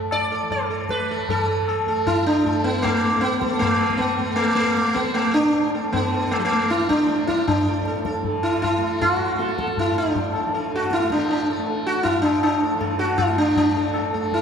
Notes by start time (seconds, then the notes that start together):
Already playing: A2 E3 A3
0.11 D5, tabla na
0.32 A4
0.42 E3
0.51 A4, tabla tin, tabla ge
0.70 A4
0.89 B4, tabla ke
0.99 A3
1.11 A4
1.29 E3 A4, tabla tin, tabla ge
1.48 A4
1.68 A4, tabla na
1.86 A3 A4
2.07 E4, tabla tin, tabla ge
2.26 D4
2.44 A3 A4, tabla tin, tabla ge
2.64 B3
2.78 B3
2.83 A3, tabla tin, tabla ge
3.01 A2
3.05 A4
3.21 B3, tabla te
3.33 tabla te
3.42 A4, tabla ke
3.52 tabla te
3.59 E3 A3, tabla tin, tabla ge
3.80 tabla na
3.90 tabla ke
3.97 B3, tabla tin, tabla ge
4.19 A3 A4
4.36 A3, tabla tin
4.55 A3
4.75 A3 A4, tabla te
4.87 tabla te
4.94 B3, tabla ke
5.06 tabla te
5.14 A3, tabla tin
5.34 A2 D4
5.56 tabla tin
5.75 A4
5.91 E3 B3, tabla tin, tabla ge
6.14 A4
6.31 A3, tabla na
6.39 F#3
6.45 A3
6.50 A3
6.70 E4, tabla te
6.81 tabla te
6.89 D4, tabla ke
6.99 tabla te
7.08 A3, tabla te
7.19 tabla te
7.27 E4, tabla ke
7.39 tabla te
7.47 D4, tabla tin, tabla ge
7.64 A2 A4
7.86 A4, tabla te
7.96 tabla te
8.05 A4, tabla ke
8.15 tabla te
8.20 E3, tabla tin, tabla ge
8.43 E4
8.62 E4, tabla tin, tabla ge
8.78 A3
8.82 A4
9.01 F#4, tabla tin, tabla ge
9.35 A3
9.39 A4, tabla te
9.49 tabla te
9.58 A4, tabla ke
9.68 tabla te
9.77 E4, tabla tin, tabla ge
9.91 A2
9.98 D4
10.15 tabla tin, tabla ge
10.34 A4, tabla na
10.45 E3
10.52 A4, tabla tin
10.76 F#4
10.91 E4, tabla te
11.00 A3, tabla te
11.10 D4, tabla ke
11.18 tabla te
11.28 D4, tabla tin
11.50 A4
11.59 A3
11.66 tabla tin
11.87 F#4
12.03 E4, tabla tin, tabla ge
12.16 A2
12.22 D4, tabla na
12.43 D4, tabla na
12.63 A4
12.73 E3
12.80 A4, tabla na, tabla ge
12.99 F#4, tabla te
13.18 E4, tabla na, tabla ge
13.29 A3
13.37 D4, tabla te
13.56 E3 D4, tabla tin, tabla ge
13.76 A4
13.94 A4, tabla na
14.14 A3 A4
14.32 E4, tabla tin, tabla ge